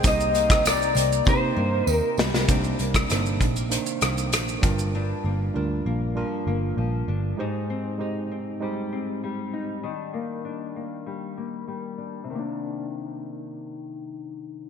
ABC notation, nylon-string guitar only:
X:1
M:4/4
L:1/16
Q:1/4=98
K:Cm
V:1 name="Nylon-string guitar"
[C,E]2 B,2 E2 B,2 E2 B,2 E2 G,2 | [C,D]2 B,2 D2 A, B, E,2 B,2 E,2 G,,2 | [G,,D]2 B,2 D2 B,2 F,2 B,2 F,2 D2 | [A,,E]2 C2 E2 C2 G,2 C2 G,2 E2 |
[E,D]2 B,2 D2 B,2 G,2 B,2 G,2 D2 | [C,E,B,D]16 |]